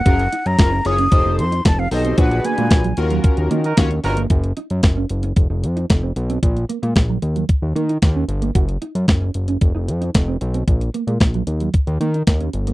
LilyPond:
<<
  \new Staff \with { instrumentName = "Flute" } { \time 4/4 \key fis \major \tempo 4 = 113 fis''8. ais''8. dis'''4 c'''8 a''16 f''16 ees''8 | fis''8 gis''4 r2 r8 | r1 | r1 |
r1 | r1 | }
  \new Staff \with { instrumentName = "Analog polysynth" } { \time 4/4 \key fis \major <cis' eis' gis' ais'>16 r8 <gis' ais'>16 <cis' eis' gis' ais'>16 r16 <cis' eis' gis' cis''>16 r16 <ees' g' a' c''>8 r4 <ees' g' a' c''>8 | <d' fis' gis' b'>4~ <d' fis' gis' b'>16 r16 <cis' eis' fis' ais'>4~ <cis' eis' fis' ais'>16 r16 <cis' eis' fis' cis''>16 r16 <cis' eis' fis' ais'>16 r16 | r1 | r1 |
r1 | r1 | }
  \new Staff \with { instrumentName = "Horn section" } { \time 4/4 \key fis \major r1 | r2 r8. <fis dis' ais'>16 r8 <fis dis' ais'>8 | r1 | r1 |
r1 | r1 | }
  \new Staff \with { instrumentName = "Clean electric guitar" } { \time 4/4 \key fis \major fis'16 r16 dis'16 r8 cis'16 r16 cis'16 r16 ees'16 r16 ees'16 r16 c'16 r16 c'16 | r8 ais16 gis16 r16 fis16 r16 fis16 r8 ais16 dis'16 r16 cis'16 r16 ais16 | fis'16 r16 dis'16 r8 cis'16 r16 cis'16 r16 dis'16 r16 dis'16 r16 c'16 r16 c'16 | r8 ais16 gis16 r16 fis16 r16 fis16 r8 ais16 dis'16 r16 cis'16 r16 ais16 |
fis'16 r16 dis'16 r8 cis'16 r16 cis'16 r16 dis'16 r16 dis'16 r16 c'16 r16 c'16 | r8 ais16 gis16 r16 fis16 r16 fis16 r8 ais16 dis'16 r16 cis'16 r16 ais16 | }
  \new Staff \with { instrumentName = "Analog synth bass" } { \clef bass \time 4/4 \key fis \major fis,,8 r16 fis,16 fis,,8 fis,,8 f,,16 f,,16 f,8 f,,8 b,,8 | ais,,8 r16 ais,16 ais,,8 dis,8 r16 dis,16 dis8 dis,8 g,,8 | fis,,8 r16 fis,16 fis,,8 fis,,8 f,,16 f,,16 f,8 f,,8 b,,8 | ais,,8 r16 ais,16 ais,,8 dis,8 r16 dis,16 dis8 dis,8 g,,8 |
fis,,8 r16 fis,16 fis,,8 fis,,8 f,,16 f,,16 f,8 f,,8 b,,8 | ais,,8 r16 ais,16 ais,,8 dis,8 r16 dis,16 dis8 dis,8 g,,8 | }
  \new DrumStaff \with { instrumentName = "Drums" } \drummode { \time 4/4 <hh bd>16 hh16 hh16 hh16 <hh bd sn>8 hh16 hh16 <hh bd>8 hh16 hh16 <hh bd sn>8 hho16 hh16 | <hh bd>16 hh16 hh16 hh16 <hh bd sn>16 hh16 hh16 hh16 <hh bd>16 hh16 hh16 hh16 <hh bd sn>16 hh16 hho16 hh16 | <hh bd>16 hh16 hh16 hh16 <hh bd sn>8 hh16 hh16 <hh bd>8 hh16 hh16 <hh bd sn>8 hh16 hh16 | <hh bd>16 hh16 hh16 hh16 <hh bd sn>8 hh16 hh16 <hh bd>8 hh16 hh16 <hh bd sn>8 hh16 hh16 |
<hh bd>16 hh16 hh16 hh16 <hh bd sn>8 hh16 hh16 <hh bd>8 hh16 hh16 <hh bd sn>8 hh16 hh16 | <hh bd>16 hh16 hh16 hh16 <hh bd sn>16 hh16 hh16 hh16 <hh bd>16 hh16 hh16 hh16 <hh bd sn>16 hh16 hh16 hh16 | }
>>